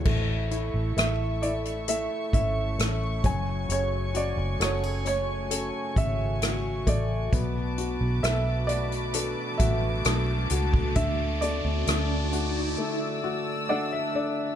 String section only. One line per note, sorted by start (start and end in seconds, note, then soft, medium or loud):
0.05 7.29 A3 medium
0.05 3.21 A4 soft
0.05 3.21 E5 medium
0.05 7.29 C#6 medium
3.24 14.55 F#4 medium
3.24 7.29 G#5 medium
7.32 10.92 B4 medium
7.32 14.55 A5 medium
7.32 12.74 D6 medium
10.95 14.55 D5 medium
12.77 14.55 E6 medium